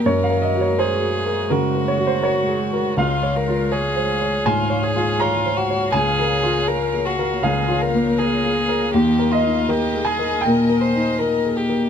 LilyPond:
<<
  \new Staff \with { instrumentName = "Grand piano" } { \time 4/4 \key des \major \tempo 4 = 81 << { des''16 f''16 ees''16 des''16 c''4 bes'8 des''16 c''16 des''4 | f''2 aes''4 bes''4 | aes''2 f''4 r4 | r8 ees''4 aes''8 g''2 | } \\ { \tuplet 3/2 { ges,8 bes'8 ges'8 bes'8 aes'8 bes'8 des8 bes'8 ges'8 bes'8 aes'8 bes'8 } | \tuplet 3/2 { des,8 des''8 f'8 des''8 c''8 des''8 aes,8 des''8 f'8 des''8 c''8 des''8 } | \tuplet 3/2 { des,8 bes'8 f'8 bes'8 aes'8 bes'8 des,8 f'8 bes8 bes'8 aes'8 bes'8 } | \tuplet 3/2 { ees,8 bes'8 ees'8 bes'8 aes'8 bes'8 bes,8 bes'8 ees'8 bes'8 aes'8 bes'8 } | } >> }
  \new Staff \with { instrumentName = "String section" } { \time 4/4 \key des \major << { <ges' bes'>1 | <des'' f''>1~ | <des'' f''>1 | <bes' ees''>1 | } \\ { aes1~ | aes1 | bes1~ | bes1 | } >> }
  \new Staff \with { instrumentName = "Violin" } { \time 4/4 \key des \major bes'4 aes'4 ges'2 | f'8 bes'8 aes'4 f'8 aes'8 f'8 ges'8 | aes'4 bes'8 ges'8 aes'8 bes'8 aes'4 | g'8 f'8 g'8 aes'8 bes'8 c''8 bes'8 g'8 | }
>>